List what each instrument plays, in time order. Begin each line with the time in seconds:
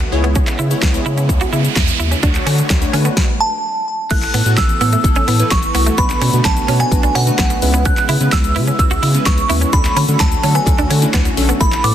Already playing: supersaw synth D3 B3 F#4
0.00 muted clean electric guitar stroke, closed hi-hat
0.12 sub bass C#2, supersaw synth C#3 G#3 E4, synth pluck B3 E4 G#4 C#5
0.24 clean electric guitar B3, closed hi-hat
0.35 clean electric guitar C#4, kick, closed hi-hat, noise sweep, shaker
0.47 muted clean electric guitar stroke, clap, closed hi-hat, shaker
0.59 sub bass C#3, clean electric guitar E4, shaker
0.71 synth pluck B3 E4 G#4 C#5, closed hi-hat, shaker
0.82 sub bass C#2, muted clean electric guitar stroke, kick, snare, clap, closed hi-hat, shaker
0.94 synth pluck B3 E4 G#4 C#5, closed hi-hat, shaker
1.06 sub bass C#3, clean electric guitar E4, shaker
1.18 clean electric guitar C#4, closed hi-hat, shaker
1.29 sub bass C#2, muted clean electric guitar stroke, kick, closed hi-hat, shaker
1.41 clean electric guitar F#4, closed hi-hat, shaker
1.53 sub bass C#3, clean electric guitar E4, shaker
1.65 closed hi-hat, shaker
1.76 sub bass E2, muted clean electric guitar stroke, kick, snare, clap, closed hi-hat, shaker
1.88 closed hi-hat, shaker
2.00 sub bass D#2, clean electric guitar E4, shaker
2.11 clean electric guitar C#4, closed hi-hat, shaker
2.23 sub bass D2, supersaw synth D3 A3 F#4 C#5, synth pluck A3 D4 F#4 C#5, clean electric guitar D4, kick, closed hi-hat, shaker
2.35 muted clean electric guitar stroke, clap, closed hi-hat, shaker
2.46 sub bass D3, clean electric guitar C#4, open hi-hat, shaker
2.59 closed hi-hat, shaker
2.70 sub bass D2, muted clean electric guitar stroke, kick, snare, clap, closed hi-hat, shaker
2.81 synth pluck A3 D4 F#4 C#5, closed hi-hat, shaker
2.93 sub bass D3, synth pluck A3 D4 F#4 B4, clean electric guitar C#4, open hi-hat, shaker
3.05 clean electric guitar B3, closed hi-hat, shaker
3.17 kick, snare
3.40 synth bell A5
4.11 sub bass A1, supersaw synth E3 A3 B3 A4, clean electric guitar A3, synth pluck B3 E4 A4, synth bell F#6, kick, closed hi-hat, crash, shaker
4.22 muted clean electric guitar stroke, clap, closed hi-hat, shaker
4.34 sub bass A2, clean electric guitar B3, open hi-hat, shaker
4.46 sub bass A2, synth pluck B3 E4 F#4, shaker
4.57 sub bass A1, synth bell E6, muted clean electric guitar stroke, kick, snare, clap, closed hi-hat, shaker
4.69 closed hi-hat, shaker
4.81 sub bass A2, synth pluck B3 E4 A4, clean electric guitar B3, synth bell E6, open hi-hat, shaker
4.93 clean electric guitar A3, closed hi-hat, shaker
5.04 sub bass A1, synth pluck B3 E4 A4, muted clean electric guitar stroke, kick, closed hi-hat, shaker
5.16 sub bass A1, clean electric guitar C#4, closed hi-hat, shaker
5.28 sub bass A2, clean electric guitar B3, open hi-hat, shaker
5.39 synth pluck B3 E4 B4, closed hi-hat, shaker
5.51 sub bass A1, synth bell C#6, muted clean electric guitar stroke, kick, snare, clap, closed hi-hat, shaker
5.63 closed hi-hat, shaker
5.75 sub bass C2, synth pluck B3 E4 F#4, clean electric guitar B3, open hi-hat, shaker
5.86 clean electric guitar A3, closed hi-hat, shaker
5.98 sub bass B1, supersaw synth D3 F#4, synth pluck A3 B3 D4 F#4 B4, clean electric guitar B3, synth bell B5, kick, closed hi-hat, shaker
6.10 muted clean electric guitar stroke, clap, closed hi-hat, shaker
6.21 sub bass B2, clean electric guitar C#4, open hi-hat, shaker
6.33 sub bass B2, synth pluck A3 B3 D4 F#4 B4, closed hi-hat, shaker
6.45 sub bass B1, synth bell A5, muted clean electric guitar stroke, kick, snare, clap, closed hi-hat, shaker
6.57 closed hi-hat, shaker
6.68 sub bass B2, synth pluck A3 B3 D4 F#4 C#5, clean electric guitar C#4, open hi-hat, shaker
6.80 clean electric guitar B3, synth bell G#5, closed hi-hat, shaker
6.92 sub bass B1, synth pluck A3 B3 D4 F#4 B4, muted clean electric guitar stroke, kick, closed hi-hat, shaker
7.03 sub bass B1, clean electric guitar D4, closed hi-hat, shaker
7.15 sub bass B2, clean electric guitar C#4, synth bell F#5, open hi-hat, shaker
7.27 synth pluck A3 B3 D4 F#4 B4, closed hi-hat, shaker
7.39 sub bass B1, clean electric guitar B3, kick, snare, clap, closed hi-hat, shaker
7.50 muted clean electric guitar stroke, closed hi-hat, shaker
7.62 sub bass C#2, supersaw synth C#3 G#3 E4, synth pluck G#3 B3 C#4 E4 B4, open hi-hat, shaker
7.74 clean electric guitar B3, closed hi-hat, shaker
7.85 clean electric guitar C#4, synth bell F#6, kick, closed hi-hat, shaker
7.97 muted clean electric guitar stroke, clap, closed hi-hat, shaker
8.09 sub bass C#3, clean electric guitar E4, open hi-hat, shaker
8.20 sub bass C#3, synth pluck G#3 B3 C#4 E4 B4, closed hi-hat, shaker
8.32 sub bass C#2, synth bell E6, muted clean electric guitar stroke, kick, snare, clap, closed hi-hat, shaker
8.44 closed hi-hat, shaker
8.56 sub bass C#3, synth pluck G#3 B3 C#4 E4 B4, clean electric guitar E4, open hi-hat, shaker
8.67 clean electric guitar C#4, closed hi-hat, shaker
8.79 sub bass C#2, synth pluck G#3 B3 C#4 E4 F#4, synth bell E6, muted clean electric guitar stroke, kick, closed hi-hat, shaker
8.91 sub bass C#2, clean electric guitar F#4, closed hi-hat, shaker
9.03 sub bass C#3, clean electric guitar E4, open hi-hat, shaker
9.14 synth pluck G#3 B3 C#4 E4 B4, closed hi-hat, shaker
9.26 sub bass C#2, synth bell C#6, muted clean electric guitar stroke, kick, snare, clap, closed hi-hat, shaker
9.38 closed hi-hat, shaker
9.49 sub bass D#2, synth pluck G#3 B3 C#4 E4 B4, clean electric guitar E4, open hi-hat, shaker
9.61 clean electric guitar C#4, closed hi-hat, shaker
9.73 sub bass D2, supersaw synth D3 A3 C#4 F#4, synth pluck F#3 A3 C#4 D4 A4, clean electric guitar D4, synth bell B5, kick, closed hi-hat, shaker
9.85 muted clean electric guitar stroke, clap, closed hi-hat, shaker
9.96 sub bass D3, clean electric guitar C#4, synth bell B5, open hi-hat, shaker
10.08 sub bass D3, synth pluck F#3 A3 C#4 D4 A4, closed hi-hat, shaker
10.20 sub bass D2, synth bell A5, muted clean electric guitar stroke, kick, snare, clap, closed hi-hat, shaker
10.32 closed hi-hat, shaker
10.43 sub bass D3, synth pluck F#3 A3 C#4 D4 A4, clean electric guitar C#4, open hi-hat, shaker
10.55 clean electric guitar B3, synth bell G#5, closed hi-hat, shaker
10.67 sub bass D2, synth pluck F#3 A3 C#4 D4 A4, muted clean electric guitar stroke, kick, clap, closed hi-hat, shaker
10.78 sub bass D2, clean electric guitar D4, closed hi-hat, shaker
10.90 sub bass D3, clean electric guitar C#4, open hi-hat, shaker
11.02 synth pluck F#3 A3 C#4 D4 E4, closed hi-hat, shaker
11.14 sub bass D2, clean electric guitar B3, kick, snare, clap, closed hi-hat, shaker
11.25 muted clean electric guitar stroke, closed hi-hat, shaker
11.37 sub bass A#1, synth pluck F#3 A3 C#4 D4 A4, open hi-hat, shaker
11.49 clean electric guitar B3, closed hi-hat, shaker
11.60 sub bass A1, supersaw synth E3 B3 A4, clean electric guitar A3, synth pluck B3 E4 A4, synth bell B5, kick, closed hi-hat, shaker
11.72 muted clean electric guitar stroke, clap, closed hi-hat, shaker
11.84 sub bass A2, clean electric guitar B3, synth bell D6, open hi-hat, shaker